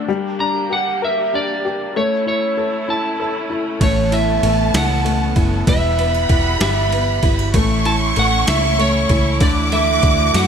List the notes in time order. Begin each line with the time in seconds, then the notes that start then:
Already playing: D4
0.08 G3 A#3 G4
0.39 D4 A#5
0.70 G4 F#5
1.02 A#4 E5
1.34 D4 D5
1.65 G4
1.94 A3 C#4 E4 C#5
2.27 E4 C#5
2.58 A4
2.88 E4 A5
3.20 A4
3.50 E4
3.80 A1 E3 A3 B3 C#5 A5, kick, ride
4.12 C#4 E4 E5, ride
4.43 A1 A3 A4, ride
4.74 C#2 B3 E4 F#5, snare, ride
5.05 A3 C#4, ride
5.36 F#1 E4 A4, kick, ride
5.66 E1 E3 G3 E5 F#5 B5, kick, ride
5.98 B3 D4, ride
6.14 E4
6.29 E1 E4 F#4, kick, ride
6.60 G1 B3 G4 E5, snare, ride
6.92 B3 E4, ride
7.23 G1 E4, kick, ride
7.39 F#4
7.54 A1 E3 A3 C#4 E4 C#6, kick, ride
7.85 C#4 E4 A5, ride
8.16 A1 A3 A4 F#5, ride
8.47 C#2 A3 E4 E5, snare, ride
8.79 A3 C#4 C#5, ride
9.09 C#2 E4 A4, kick, ride
9.40 D2 D3 E3 A3 F#4 D5 D6, kick, ride
9.72 A3 E4 E5, ride
10.03 D2 D4 F#4, kick, ride
10.34 F#2 A3 F#4 F#5, snare, ride